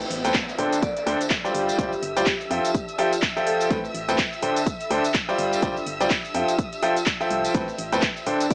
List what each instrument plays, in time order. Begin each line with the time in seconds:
Already playing: ambient pad A4 C5 G5, violin section E5 E6, downlifter
0.00 tambourine, shaker
0.08 fm bass A1, ambient pad E5, open hi-hat
0.24 fm bass E2, grand piano A2 C4 A4 B4 G5, closed hi-hat, tambourine, shaker
0.34 kick, clap, closed hi-hat, tambourine, shaker
0.48 tambourine, shaker
0.58 fm bass D1, grand piano D3 D4 A4 C5 G5, ambient pad D4, open hi-hat
0.72 closed hi-hat, tambourine, shaker
0.82 vibraphone D5, kick, closed hi-hat, tambourine, shaker
0.96 vibraphone D5, closed hi-hat, tambourine, shaker
1.06 fm bass D2, grand piano D3 D4 A4 C5 G5, vibraphone C5, open hi-hat
1.21 closed hi-hat, tambourine, shaker
1.30 kick, clap, closed hi-hat, shaker
1.45 grand piano G3 F4 C5 D5 G5, tambourine, shaker
1.54 fm bass G1, vibraphone G4, ambient pad G4, open hi-hat
1.69 tambourine, shaker
1.79 fm bass G1, grand piano G3 F4 C5 D5 G5, kick, closed hi-hat, shaker
1.91 ambient pad D5, tambourine, shaker
1.99 fm bass G1, ambient pad A5
2.03 open hi-hat
2.16 fm bass D2, grand piano G3 F4 C5 D5 G5, vibraphone G4, closed hi-hat, tambourine, shaker
2.26 kick, clap, closed hi-hat, shaker
2.41 tambourine, shaker
2.50 fm bass F2, grand piano F3 F4 A4 E5 G5, ambient pad F4, open hi-hat
2.65 closed hi-hat, tambourine, shaker
2.75 ambient pad G5, kick, closed hi-hat, shaker
2.88 closed hi-hat, tambourine, shaker
2.97 grand piano F3 F4 A4 E5 G5, vibraphone G4, ambient pad C5, open hi-hat
3.12 closed hi-hat, tambourine, shaker
3.22 kick, clap, closed hi-hat, shaker
3.36 grand piano F3 F4 A4 E5 G5, tambourine, shaker
3.47 vibraphone A4, open hi-hat
3.60 tambourine, shaker
3.70 fm bass A1, grand piano A2 C4 A4 B4 G5, ambient pad A4, kick, closed hi-hat, tambourine, shaker
3.84 tambourine, shaker
3.95 fm bass A1, open hi-hat
4.05 fm bass E2, ambient pad E5
4.09 grand piano A2 C4 A4 B4 G5, closed hi-hat, tambourine, shaker
4.18 kick, clap, closed hi-hat, tambourine, shaker
4.33 tambourine, shaker
4.42 fm bass D1, grand piano D3 D4 A4 C5 G5, ambient pad D4, open hi-hat
4.56 closed hi-hat, tambourine, shaker
4.67 kick, closed hi-hat, shaker
4.80 closed hi-hat, tambourine, shaker
4.91 fm bass D2, grand piano D3 D4 A4 C5 G5, open hi-hat
5.04 closed hi-hat, tambourine, shaker
5.14 kick, clap, closed hi-hat, tambourine, shaker
5.29 grand piano G3 F4 C5 D5 G5, tambourine, shaker
5.38 fm bass G1, ambient pad G4, open hi-hat
5.53 tambourine, shaker
5.62 fm bass G1, grand piano G3 F4 C5 D5 G5, kick, closed hi-hat, shaker
5.74 ambient pad D5, tambourine, shaker
5.83 fm bass G1, ambient pad A5, open hi-hat
6.00 fm bass D2, grand piano G3 F4 C5 D5 G5, closed hi-hat, tambourine, shaker
6.10 kick, clap, closed hi-hat, tambourine, shaker
6.25 tambourine, shaker
6.34 fm bass F2, grand piano F3 F4 A4 E5 G5, ambient pad F4, open hi-hat
6.48 closed hi-hat, tambourine, shaker
6.58 kick, closed hi-hat, tambourine, shaker
6.73 closed hi-hat, tambourine, shaker
6.79 grand piano F3 F4 A4 E5 G5, ambient pad C5, open hi-hat
6.89 ambient pad G5
6.96 closed hi-hat, tambourine, shaker
7.06 kick, clap, closed hi-hat, tambourine, shaker
7.21 grand piano F3 F4 A4 E5 G5, tambourine, shaker
7.31 fm bass C2, open hi-hat
7.44 open hi-hat, tambourine, shaker
7.54 fm bass A1, grand piano A2 C4 A4 B4 G5, ambient pad A4, kick, closed hi-hat, ride, shaker
7.68 tambourine, shaker
7.78 fm bass A1, open hi-hat
7.83 ambient pad B5
7.88 ambient pad E5
7.92 fm bass E2, grand piano A2 C4 A4 B4 G5, closed hi-hat, tambourine, shaker
8.02 kick, clap, closed hi-hat, ride, tambourine, shaker
8.16 tambourine, shaker
8.26 fm bass D1, grand piano D3 D4 A4 C5 G5, ambient pad D4, open hi-hat
8.40 closed hi-hat, tambourine, shaker
8.50 vibraphone D5, kick, closed hi-hat, ride, tambourine, shaker